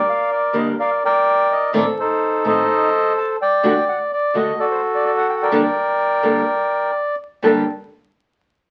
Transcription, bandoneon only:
Already playing: A#4 D5
0.09 F5
0.32 D5
0.57 D#5
0.79 A#4 D5 F5
1.05 A#4 D5 G5
1.52 D#5
1.76 A4 D5
2.00 D#4 A4 C5
2.47 A4 C5 D#5
3.18 A5
3.42 D5 G5
3.88 F#5
4.13 D5
4.36 D#5
4.59 F#4 A4 D5
4.71 C5
4.95 D5
5.06 D5
5.17 F#5
5.30 G5
5.35 F#5
5.43 A#4 D5 G5
7.43 G5

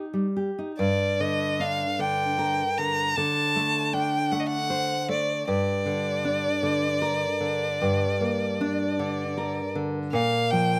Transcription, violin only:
0.79 D5
1.20 D#5
1.60 F5
2.00 G5
2.78 A#5
3.16 A5
3.93 G5
4.31 F#5
4.40 D#5
4.47 F#5
5.11 D5
5.49 D5
10.13 F5
10.51 G5

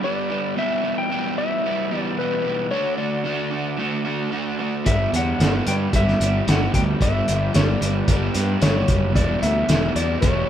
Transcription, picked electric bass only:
4.87 G1
5.13 E2
5.40 G1
5.67 G2
5.93 G1
6.21 G1
6.48 G1
6.74 D2
7.01 G1
7.29 G1
7.56 G1
7.82 G1
8.08 G1
8.36 G2
8.62 G1
8.88 F#1
9.16 E1
9.43 D2
9.69 E1
9.96 E2
10.23 E1

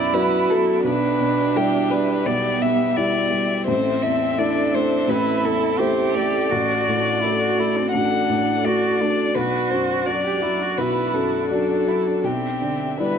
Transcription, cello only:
Already playing: E4
0.84 D4
2.28 B3
3.68 C4
4.38 D4
5.09 E4
5.79 G4
6.50 F#4
7.21 E4
7.42 F#4
7.59 E4
7.77 C4
7.94 D4
8.67 F#4
9.02 D4
9.37 F#4
10.26 G4
10.42 E4
10.61 F#4
10.80 E4
11.50 D4
11.87 E4
12.07 D4
12.27 C4
13.01 B3

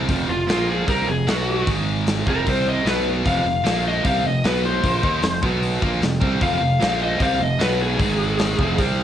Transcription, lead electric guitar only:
0.30 F4
0.69 G#4
0.89 A#4
1.10 G#4
1.30 F#4
2.30 A#4
2.49 C5
2.69 D#5
2.88 B4
3.26 F5
3.88 D#5
4.06 F5
4.26 D#5
4.47 B4
4.66 C5
6.43 F5
7.03 D#5
7.23 F5
7.43 D#5
7.62 B4
7.82 G#4

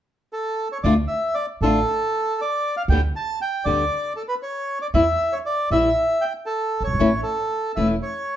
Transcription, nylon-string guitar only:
0.84 D3 A3 D4 F4
1.63 D3 A3 D4 F4
2.90 D3 G3 B3 G4
3.66 D3 G3 B3 G4
4.94 E3 G3 E4
5.71 E3 G3 E4
6.99 E3 A3 C#4 E4
7.77 E3 A3 C#4 E4

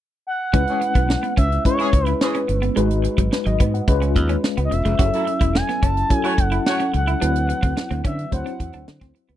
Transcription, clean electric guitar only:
0.53 C#4
0.81 muted clean electric guitar stroke
0.95 B3
1.09 muted clean electric guitar stroke
1.23 B3
1.37 C#4
1.79 E4
1.93 muted clean electric guitar stroke
2.07 E4
2.35 C#4
2.48 muted clean electric guitar stroke
2.62 B3
2.76 G#3
3.04 muted clean electric guitar stroke
3.18 F#3
3.32 muted clean electric guitar stroke
3.46 F#3
3.60 B3
4.02 C#4
4.16 muted clean electric guitar stroke
4.29 C#4
4.57 B3
4.71 muted clean electric guitar stroke
4.85 G#3
4.99 F#4
5.27 muted clean electric guitar stroke
5.41 E4
5.55 muted clean electric guitar stroke
5.69 B3
5.83 C#4
6.24 E4
6.38 muted clean electric guitar stroke
6.52 E4
6.80 C#4
6.94 muted clean electric guitar stroke
7.07 E4
7.21 D4
7.49 muted clean electric guitar stroke
7.63 C4
7.77 muted clean electric guitar stroke
7.91 C4
8.04 C#4
8.46 D4
8.60 muted clean electric guitar stroke
8.74 D4
9.01 C4
9.15 muted clean electric guitar stroke
9.29 B3

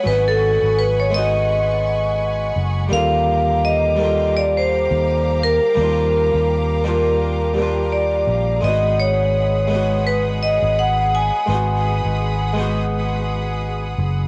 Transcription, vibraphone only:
0.07 B4
0.28 A4
0.79 B4
1.00 C#5
1.14 D#5
2.93 F5
3.65 D#5
4.37 D5
4.57 C5
5.43 A#4
7.92 D5
8.64 D#5
8.99 C#5
10.07 B4
10.43 D#5
10.79 F#5
11.15 G#5

